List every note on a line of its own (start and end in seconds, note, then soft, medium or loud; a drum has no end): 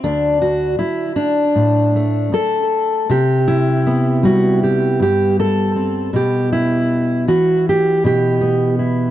0.04 0.79 D2 medium
0.04 0.41 D4 medium
0.41 0.78 F#4 medium
0.79 1.16 E4 medium
0.79 muted steel-string acoustic guitar stroke medium
1.16 2.32 D4 medium
1.55 2.31 A2 medium
1.95 3.10 A3 soft
2.32 3.10 A4 medium
2.32 muted steel-string acoustic guitar stroke medium
3.10 5.00 C3 medium
3.10 4.25 G4 medium
3.48 5.00 E4 medium
3.87 7.37 B3 soft
4.23 7.27 G3 medium
4.23 4.63 F#4 medium
4.63 5.01 G4 medium
4.99 6.09 G2 medium
4.99 5.39 G4 medium
5.40 6.15 A4 medium
5.76 6.10 C4 soft
6.13 7.28 B2 medium
6.13 6.52 G4 medium
6.52 7.28 E4 medium
7.28 9.11 E3 medium
7.28 7.66 F#4 medium
7.69 8.05 G4 medium
8.04 9.11 B2 medium
8.04 8.78 G4 medium
8.41 9.11 B3 soft
8.79 9.11 E4 soft